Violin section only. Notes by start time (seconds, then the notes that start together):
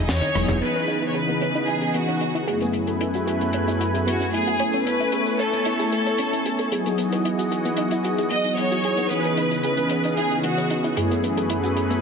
0.08 C#5
0.61 B4
1.08 C#5
1.15 B4
1.68 G#4
1.95 F#4
4.07 F#4
4.34 G#4
4.87 B4
5.41 A4
5.93 A4
8.32 D#5
8.58 C#5
9.10 B4
9.62 B4
10.16 G#4
10.43 F#4